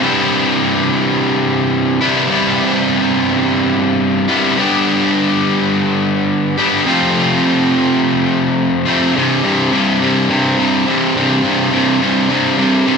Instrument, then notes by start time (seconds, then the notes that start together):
distorted electric guitar
0.00 C2 G2 C3 G3 B3 E4
2.01 C2 G2 C3 G3 B3 E4
2.29 C2 G2 C3 G3 B3 E4
4.28 C2 G2 C3 G3 B3 E4
4.57 G2 D3 G3 B3 D4 G4
6.58 G2 D3 G3 B3 D4 G4
6.86 F2 C3 F3 A3 C4 F4
8.85 F2 C3 F3 A3 C4 F4
9.15 C2 G2 C3
9.44 C2 G2 C3
9.72 C2 G2 C3
10.01 C2 G2 C3
10.30 C2 G2 C3
10.58 C2 G2 C3
10.87 C2 G2 C3
11.16 C2 G2 C3
11.44 C2 G2 C3
11.72 C2 G2 C3
12.01 C2 G2 C3
12.29 C2 G2 C3
12.58 C2 G2 C3
12.86 C2 G2 C3